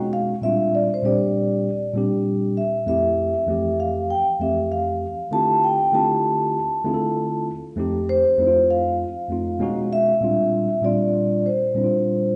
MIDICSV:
0, 0, Header, 1, 3, 480
1, 0, Start_track
1, 0, Key_signature, -1, "major"
1, 0, Tempo, 612245
1, 336, Time_signature, 4, 2, 24, 8
1, 9689, End_track
2, 0, Start_track
2, 0, Title_t, "Vibraphone"
2, 0, Program_c, 0, 11
2, 102, Note_on_c, 0, 77, 96
2, 209, Note_off_c, 0, 77, 0
2, 339, Note_on_c, 0, 76, 93
2, 585, Note_off_c, 0, 76, 0
2, 587, Note_on_c, 0, 74, 83
2, 734, Note_off_c, 0, 74, 0
2, 737, Note_on_c, 0, 72, 79
2, 825, Note_off_c, 0, 72, 0
2, 826, Note_on_c, 0, 74, 71
2, 1510, Note_off_c, 0, 74, 0
2, 2018, Note_on_c, 0, 76, 69
2, 2249, Note_off_c, 0, 76, 0
2, 2259, Note_on_c, 0, 76, 81
2, 2946, Note_off_c, 0, 76, 0
2, 2978, Note_on_c, 0, 77, 78
2, 3218, Note_on_c, 0, 79, 81
2, 3224, Note_off_c, 0, 77, 0
2, 3326, Note_off_c, 0, 79, 0
2, 3460, Note_on_c, 0, 76, 74
2, 3567, Note_off_c, 0, 76, 0
2, 3698, Note_on_c, 0, 77, 83
2, 4177, Note_on_c, 0, 81, 100
2, 4191, Note_off_c, 0, 77, 0
2, 4420, Note_on_c, 0, 79, 84
2, 4424, Note_off_c, 0, 81, 0
2, 4661, Note_on_c, 0, 81, 79
2, 4665, Note_off_c, 0, 79, 0
2, 5827, Note_off_c, 0, 81, 0
2, 6345, Note_on_c, 0, 72, 90
2, 6825, Note_on_c, 0, 77, 102
2, 6835, Note_off_c, 0, 72, 0
2, 7782, Note_on_c, 0, 76, 93
2, 7809, Note_off_c, 0, 77, 0
2, 8503, Note_on_c, 0, 74, 77
2, 8521, Note_off_c, 0, 76, 0
2, 8986, Note_on_c, 0, 72, 67
2, 8994, Note_off_c, 0, 74, 0
2, 9670, Note_off_c, 0, 72, 0
2, 9689, End_track
3, 0, Start_track
3, 0, Title_t, "Tine electric piano"
3, 0, Program_c, 1, 4
3, 0, Note_on_c, 1, 47, 90
3, 0, Note_on_c, 1, 56, 78
3, 0, Note_on_c, 1, 61, 79
3, 0, Note_on_c, 1, 63, 81
3, 0, Note_on_c, 1, 66, 98
3, 257, Note_off_c, 1, 47, 0
3, 260, Note_off_c, 1, 56, 0
3, 264, Note_off_c, 1, 61, 0
3, 268, Note_off_c, 1, 63, 0
3, 271, Note_off_c, 1, 66, 0
3, 326, Note_on_c, 1, 46, 66
3, 333, Note_on_c, 1, 55, 57
3, 339, Note_on_c, 1, 60, 58
3, 346, Note_on_c, 1, 62, 62
3, 355, Note_on_c, 1, 65, 76
3, 686, Note_off_c, 1, 46, 0
3, 689, Note_off_c, 1, 55, 0
3, 693, Note_off_c, 1, 60, 0
3, 696, Note_off_c, 1, 62, 0
3, 700, Note_off_c, 1, 65, 0
3, 803, Note_on_c, 1, 46, 71
3, 811, Note_on_c, 1, 55, 62
3, 816, Note_on_c, 1, 60, 63
3, 825, Note_on_c, 1, 62, 66
3, 831, Note_on_c, 1, 67, 77
3, 1314, Note_off_c, 1, 46, 0
3, 1318, Note_off_c, 1, 55, 0
3, 1320, Note_off_c, 1, 60, 0
3, 1325, Note_off_c, 1, 62, 0
3, 1328, Note_off_c, 1, 67, 0
3, 1520, Note_on_c, 1, 46, 70
3, 1527, Note_on_c, 1, 55, 67
3, 1533, Note_on_c, 1, 60, 69
3, 1541, Note_on_c, 1, 62, 66
3, 1548, Note_on_c, 1, 67, 81
3, 2032, Note_off_c, 1, 46, 0
3, 2035, Note_off_c, 1, 55, 0
3, 2039, Note_off_c, 1, 60, 0
3, 2043, Note_off_c, 1, 62, 0
3, 2046, Note_off_c, 1, 67, 0
3, 2243, Note_on_c, 1, 41, 66
3, 2249, Note_on_c, 1, 57, 63
3, 2257, Note_on_c, 1, 60, 60
3, 2264, Note_on_c, 1, 64, 63
3, 2271, Note_on_c, 1, 67, 68
3, 2605, Note_off_c, 1, 41, 0
3, 2608, Note_off_c, 1, 57, 0
3, 2611, Note_off_c, 1, 60, 0
3, 2615, Note_off_c, 1, 64, 0
3, 2619, Note_off_c, 1, 67, 0
3, 2720, Note_on_c, 1, 41, 69
3, 2727, Note_on_c, 1, 57, 66
3, 2735, Note_on_c, 1, 60, 65
3, 2744, Note_on_c, 1, 52, 65
3, 2748, Note_on_c, 1, 67, 75
3, 3232, Note_off_c, 1, 41, 0
3, 3236, Note_off_c, 1, 57, 0
3, 3239, Note_off_c, 1, 60, 0
3, 3244, Note_off_c, 1, 52, 0
3, 3246, Note_off_c, 1, 67, 0
3, 3444, Note_on_c, 1, 41, 65
3, 3452, Note_on_c, 1, 57, 54
3, 3461, Note_on_c, 1, 60, 55
3, 3465, Note_on_c, 1, 52, 55
3, 3473, Note_on_c, 1, 67, 65
3, 3954, Note_off_c, 1, 41, 0
3, 3958, Note_off_c, 1, 57, 0
3, 3962, Note_off_c, 1, 60, 0
3, 3965, Note_off_c, 1, 52, 0
3, 3969, Note_off_c, 1, 67, 0
3, 4164, Note_on_c, 1, 50, 71
3, 4168, Note_on_c, 1, 57, 60
3, 4174, Note_on_c, 1, 60, 62
3, 4179, Note_on_c, 1, 64, 64
3, 4187, Note_on_c, 1, 65, 59
3, 4192, Note_on_c, 1, 67, 74
3, 4525, Note_off_c, 1, 50, 0
3, 4527, Note_off_c, 1, 57, 0
3, 4530, Note_off_c, 1, 60, 0
3, 4532, Note_off_c, 1, 64, 0
3, 4536, Note_off_c, 1, 65, 0
3, 4539, Note_off_c, 1, 67, 0
3, 4643, Note_on_c, 1, 50, 73
3, 4647, Note_on_c, 1, 57, 66
3, 4655, Note_on_c, 1, 60, 64
3, 4659, Note_on_c, 1, 64, 63
3, 4665, Note_on_c, 1, 65, 63
3, 4670, Note_on_c, 1, 67, 77
3, 5154, Note_off_c, 1, 50, 0
3, 5156, Note_off_c, 1, 57, 0
3, 5160, Note_off_c, 1, 60, 0
3, 5162, Note_off_c, 1, 64, 0
3, 5164, Note_off_c, 1, 65, 0
3, 5167, Note_off_c, 1, 67, 0
3, 5362, Note_on_c, 1, 50, 74
3, 5366, Note_on_c, 1, 57, 69
3, 5371, Note_on_c, 1, 60, 68
3, 5379, Note_on_c, 1, 64, 72
3, 5383, Note_on_c, 1, 65, 72
3, 5390, Note_on_c, 1, 68, 66
3, 5440, Note_on_c, 1, 69, 84
3, 5446, Note_off_c, 1, 68, 0
3, 5873, Note_off_c, 1, 50, 0
3, 5875, Note_off_c, 1, 57, 0
3, 5877, Note_off_c, 1, 60, 0
3, 5881, Note_off_c, 1, 64, 0
3, 5883, Note_off_c, 1, 65, 0
3, 5912, Note_off_c, 1, 69, 0
3, 6083, Note_on_c, 1, 41, 81
3, 6091, Note_on_c, 1, 57, 71
3, 6096, Note_on_c, 1, 60, 78
3, 6105, Note_on_c, 1, 63, 70
3, 6112, Note_on_c, 1, 67, 86
3, 6445, Note_off_c, 1, 41, 0
3, 6448, Note_off_c, 1, 57, 0
3, 6451, Note_off_c, 1, 60, 0
3, 6456, Note_off_c, 1, 63, 0
3, 6459, Note_off_c, 1, 67, 0
3, 6565, Note_on_c, 1, 41, 72
3, 6571, Note_on_c, 1, 57, 67
3, 6576, Note_on_c, 1, 60, 66
3, 6585, Note_on_c, 1, 63, 67
3, 6593, Note_on_c, 1, 64, 63
3, 6642, Note_on_c, 1, 65, 78
3, 6647, Note_off_c, 1, 64, 0
3, 7075, Note_off_c, 1, 41, 0
3, 7078, Note_off_c, 1, 57, 0
3, 7080, Note_off_c, 1, 60, 0
3, 7085, Note_off_c, 1, 63, 0
3, 7113, Note_off_c, 1, 65, 0
3, 7280, Note_on_c, 1, 41, 60
3, 7289, Note_on_c, 1, 57, 55
3, 7296, Note_on_c, 1, 60, 57
3, 7303, Note_on_c, 1, 63, 58
3, 7310, Note_on_c, 1, 65, 69
3, 7520, Note_on_c, 1, 47, 93
3, 7526, Note_on_c, 1, 56, 81
3, 7528, Note_off_c, 1, 41, 0
3, 7531, Note_off_c, 1, 63, 0
3, 7533, Note_off_c, 1, 57, 0
3, 7534, Note_on_c, 1, 61, 81
3, 7536, Note_off_c, 1, 60, 0
3, 7541, Note_on_c, 1, 63, 82
3, 7543, Note_off_c, 1, 65, 0
3, 7548, Note_on_c, 1, 66, 99
3, 7935, Note_off_c, 1, 47, 0
3, 7938, Note_off_c, 1, 56, 0
3, 7942, Note_off_c, 1, 61, 0
3, 7945, Note_off_c, 1, 63, 0
3, 7949, Note_off_c, 1, 66, 0
3, 8003, Note_on_c, 1, 46, 67
3, 8009, Note_on_c, 1, 55, 61
3, 8017, Note_on_c, 1, 60, 64
3, 8024, Note_on_c, 1, 62, 63
3, 8031, Note_on_c, 1, 65, 72
3, 8364, Note_off_c, 1, 46, 0
3, 8368, Note_off_c, 1, 55, 0
3, 8372, Note_off_c, 1, 60, 0
3, 8375, Note_off_c, 1, 62, 0
3, 8379, Note_off_c, 1, 65, 0
3, 8482, Note_on_c, 1, 46, 69
3, 8490, Note_on_c, 1, 55, 65
3, 8495, Note_on_c, 1, 60, 60
3, 8503, Note_on_c, 1, 62, 64
3, 8512, Note_on_c, 1, 65, 80
3, 8993, Note_off_c, 1, 46, 0
3, 8997, Note_off_c, 1, 55, 0
3, 8999, Note_off_c, 1, 60, 0
3, 9004, Note_off_c, 1, 62, 0
3, 9008, Note_off_c, 1, 65, 0
3, 9205, Note_on_c, 1, 46, 60
3, 9211, Note_on_c, 1, 55, 57
3, 9219, Note_on_c, 1, 60, 54
3, 9225, Note_on_c, 1, 62, 57
3, 9232, Note_on_c, 1, 64, 53
3, 9283, Note_on_c, 1, 65, 68
3, 9287, Note_off_c, 1, 64, 0
3, 9689, Note_off_c, 1, 46, 0
3, 9689, Note_off_c, 1, 55, 0
3, 9689, Note_off_c, 1, 60, 0
3, 9689, Note_off_c, 1, 62, 0
3, 9689, Note_off_c, 1, 65, 0
3, 9689, End_track
0, 0, End_of_file